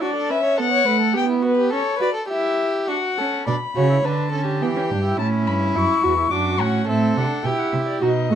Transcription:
0.01 viola D4, violin F#4 D5
0.15 violin A4
0.30 viola C#4, violin B4 E5
0.43 violin C#5
0.57 viola B3, violin A4 F#5
0.71 violin C#5
0.85 viola A3, violin B4
1.00 violin A4
1.13 viola B3, violin G4 G5
1.29 violin E4
1.42 violin F#4 B4
1.57 violin G4
1.71 viola C#4, violin A4 C#5
1.99 viola F#4, violin B4 D5
2.14 violin A4
2.28 viola E4, violin G4 E5
2.88 viola D4, violin F#4 F#5
3.18 viola C#4, violin A4
3.47 cello B2, viola D4, violin D5 B5
3.76 cello C#3, viola F#4, violin C#5
3.90 viola E4
4.04 cello D3, viola D4, violin B4 A5
4.32 viola C#4, violin A4
4.46 violin G4
4.62 cello E3, viola B3, violin G5
4.76 viola C#4
4.90 cello G2, viola D4
5.04 viola E4
5.17 cello A2, viola C#4, violin E4 A5
5.47 cello G2, violin B5
5.75 cello F#2, viola E4, violin C#6
6.03 cello E2, viola F#4
6.18 viola E4
6.31 cello F#2, viola D4, violin F#4 D6
6.60 cello A2, viola C#4, violin F#5
6.87 cello A2, viola C4, violin A4 E5
7.16 cello C3, viola D4, violin F#5
7.44 cello B2, viola E4, violin G4 G5
7.59 violin F#5
7.72 cello C3, violin E5
7.88 violin D5
8.01 cello B2, violin D#4 D#5, viola F#4
8.30 cello A2, viola A3, violin F#4

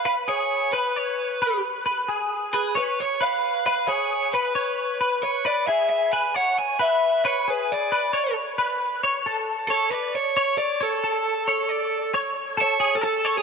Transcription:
0.05 clean electric guitar B4, overdriven electric guitar F5
0.28 clean electric guitar G#4, overdriven electric guitar C#5
0.73 overdriven electric guitar B4, clean electric guitar B4
0.96 clean electric guitar C#5
1.42 clean electric guitar B4
1.86 clean electric guitar B4
2.08 clean electric guitar G#4
2.53 overdriven electric guitar G#4, clean electric guitar B4
2.75 overdriven electric guitar B4, clean electric guitar C#5
3.00 overdriven electric guitar C#5
3.21 clean electric guitar B4, overdriven electric guitar F5
3.66 clean electric guitar B4, overdriven electric guitar F5
3.88 clean electric guitar G#4, overdriven electric guitar C#5
4.33 overdriven electric guitar B4, clean electric guitar B4
4.55 clean electric guitar C#5
5.01 clean electric guitar B4
5.23 overdriven electric guitar C#5
5.45 clean electric guitar B4, overdriven electric guitar D5
5.67 clean electric guitar G#4, overdriven electric guitar E5
5.90 overdriven electric guitar E5
6.13 clean electric guitar B4, overdriven electric guitar G#5
6.34 clean electric guitar C#5, overdriven electric guitar F#5
6.59 overdriven electric guitar G#5
6.79 clean electric guitar B4, overdriven electric guitar E5
7.25 clean electric guitar B4, overdriven electric guitar C#5
7.48 clean electric guitar G#4, overdriven electric guitar B4
7.72 overdriven electric guitar D5
7.92 clean electric guitar B4
8.13 clean electric guitar C#5
8.58 clean electric guitar B4
9.03 clean electric guitar C#5
9.26 clean electric guitar A4
9.68 overdriven electric guitar A4, clean electric guitar C#5
9.91 overdriven electric guitar B4, clean electric guitar D5
10.15 overdriven electric guitar C#5
10.37 clean electric guitar C#5
10.58 overdriven electric guitar D5
10.81 overdriven electric guitar A4, clean electric guitar C#5
11.04 clean electric guitar A4
11.48 clean electric guitar C#5
11.69 clean electric guitar D5
12.14 clean electric guitar C#5
12.57 clean electric guitar A4
12.61 overdriven electric guitar C#5
12.80 clean electric guitar G#4
12.95 overdriven electric guitar A4
13.01 clean electric guitar A4, overdriven electric guitar A4
13.25 clean electric guitar C#5
13.38 overdriven electric guitar G#4

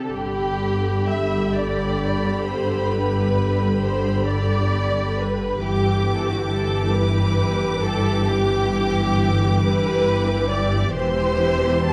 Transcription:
Already playing: violin section A4
0.10 double bass section G1, cello section G2, viola section D3 G4, violin section G4 B5
1.08 violin section E5
1.56 violin section D5
2.46 violin section C5
2.91 violin section B4
3.83 violin section C5
4.29 violin section D5
5.19 violin section B4
5.64 double bass section G1, cello section G2, viola section E3 G4, violin section G4 D6
6.15 violin section A4
6.24 violin section G4
6.32 violin section F#4
6.42 violin section G4
6.49 violin section A4
6.92 violin section B4
7.81 violin section A4
8.26 violin section G4
9.60 violin section B4
10.50 violin section D5
10.94 double bass section E1, cello section E2, viola section E3 G4, violin section C5 C6
11.87 violin section A5

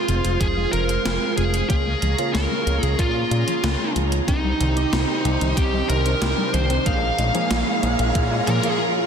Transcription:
Already playing: lead electric guitar F4, string machine G#4 C5 F5 C6, riser
0.08 analog synth bass F1, synth arpeggio sound F3, analog polysynth G#3 C4 F4, closed hi-hat
0.25 analog synth bass F1, closed hi-hat
0.40 analog synth bass F1, synth arpeggio sound C4, lead electric guitar G#4, kick, closed hi-hat
0.57 synth arpeggio sound G#3, analog polysynth G#3 C4 F4
0.72 analog synth bass F1, synth arpeggio sound F3, lead electric guitar A#4, closed hi-hat
0.89 synth arpeggio sound C4, closed hi-hat
1.05 analog synth bass F1, analog polysynth G#3 C4 F4, synth arpeggio sound C4, snare, closed hi-hat
1.37 analog synth bass F1, synth arpeggio sound G#3, lead electric guitar G#4, closed hi-hat
1.54 synth arpeggio sound F3, closed hi-hat
1.69 analog synth bass C#2, analog polysynth C#3 A#3 C#4 F4, synth arpeggio sound A#3, lead electric guitar G#4, string machine G#4 C#5 A#5, kick, closed hi-hat
1.86 synth arpeggio sound G#3
2.02 analog synth bass C#2, synth arpeggio sound F3, closed hi-hat
2.18 analog polysynth C#3 A#3 C#4 F4, closed hi-hat
2.34 analog synth bass C#2, synth arpeggio sound A#3, lead electric guitar A#4, snare, closed hi-hat
2.50 synth arpeggio sound G#3
2.66 analog synth bass C#2, analog polysynth C#3 A#3 C#4 F4, synth arpeggio sound F3, closed hi-hat
2.83 analog synth bass C#2, synth arpeggio sound A#3, lead electric guitar G#4, closed hi-hat
2.99 analog synth bass A#2, synth arpeggio sound A#3, lead electric guitar F4, kick, closed hi-hat
3.15 analog polysynth C#3 A#3 C#4 F4
3.31 analog synth bass A#2, synth arpeggio sound G#3, closed hi-hat
3.47 synth arpeggio sound F3, closed hi-hat
3.63 analog synth bass C#2, analog polysynth C#3 A#3 C#4 F4, synth arpeggio sound A#3, snare, closed hi-hat
3.80 synth arpeggio sound G#3
3.96 analog synth bass C#2, synth arpeggio sound F3, closed hi-hat
4.12 closed hi-hat
4.28 analog synth bass C2, analog polysynth C3 C4 D#4 G4, synth arpeggio sound C4, lead electric guitar D#4, string machine G4 C5 D#5 C6, kick, closed hi-hat
4.44 synth arpeggio sound G3
4.60 analog synth bass C2, synth arpeggio sound D#3, closed hi-hat
4.76 analog polysynth C3 C4 D#4 G4, synth arpeggio sound C4, closed hi-hat
4.93 analog synth bass C2, synth arpeggio sound C4, snare, closed hi-hat
5.25 analog synth bass C2, analog polysynth C3 C4 D#4 G4, synth arpeggio sound G3, closed hi-hat
5.41 analog synth bass C2, synth arpeggio sound D#3, closed hi-hat
5.57 analog synth bass C2, synth arpeggio sound C4, lead electric guitar G4, kick, closed hi-hat
5.73 analog polysynth C3 C4 D#4 G4, synth arpeggio sound G3
5.89 analog synth bass C2, synth arpeggio sound D#3, lead electric guitar A#4, closed hi-hat
6.06 closed hi-hat
6.21 analog synth bass C2, analog polysynth C3 C4 D#4 G4, synth arpeggio sound C4, snare, closed hi-hat
6.38 synth arpeggio sound G3
6.54 analog synth bass C2, synth arpeggio sound D#3, lead electric guitar C5, closed hi-hat
6.70 synth arpeggio sound C4, closed hi-hat
6.86 analog synth bass A#1, analog polysynth A#2 A#3 C#4 G#4, synth arpeggio sound A#3, string machine G#4 C#5 F5 A#5, lead electric guitar F5, kick, closed hi-hat
7.18 analog synth bass A#1, synth arpeggio sound G#3, closed hi-hat
7.35 analog polysynth A#2 A#3 C#4 G#4, synth arpeggio sound F3, closed hi-hat
7.51 analog synth bass A#1, synth arpeggio sound A#3, snare, closed hi-hat
7.67 synth arpeggio sound G#3
7.83 analog synth bass A#1, analog polysynth A#2 A#3 C#4 G#4, synth arpeggio sound F3, closed hi-hat
7.99 analog synth bass A#1, closed hi-hat
8.15 analog synth bass A#2, synth arpeggio sound A#3, kick, closed hi-hat
8.31 analog polysynth A#2 A#3 C#4 G#4, synth arpeggio sound G#3
8.47 analog synth bass A#2, synth arpeggio sound F3, lead electric guitar A#4, closed hi-hat
8.63 analog polysynth A#2 A#3 C#4 G#4, synth arpeggio sound A#3, closed hi-hat

